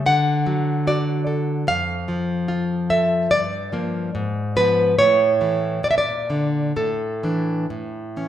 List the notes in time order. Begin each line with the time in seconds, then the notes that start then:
0.06 D3 F#5
0.46 F#3
0.87 F#4 D5
1.27 A4
1.67 F2 F5
2.08 F3
2.48 F4
2.90 A4 E5
3.31 G2 D5
3.72 F3 A#3
4.15 G#2
4.56 F3 B3 B4
4.99 A2 C#5
5.41 E3 A3
5.83 A#2 D5
5.91 E5
5.98 D5
6.30 D3 D4
6.76 A2 A4
7.23 E3 D4
7.70 A2
8.17 E3 C#4